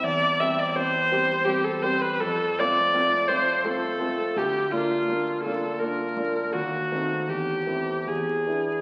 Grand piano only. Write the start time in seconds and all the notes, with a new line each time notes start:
0.04 E2
0.40 G3 C4 G4
0.76 G3 C4 G4
1.11 G3 C4 G4
1.47 G3 C4 G4
1.84 G3 C4 G4
2.21 F2
2.59 A3 C4 F4
2.94 A3 C4 F4
3.29 A3 C4 F4
3.64 A3 C4 F4
4.00 A3 C4 F4
4.36 D2
4.73 A#3 D4 F4
5.08 A#3 D4 F4
5.46 A#3 D4 F4
5.82 A#3 D4 F4
6.17 A#3 D4 F4
6.54 D#2
6.92 A3 C4 D#4
7.28 E2
7.67 A3 C4 E4
8.07 E2
8.47 B3 D4 E4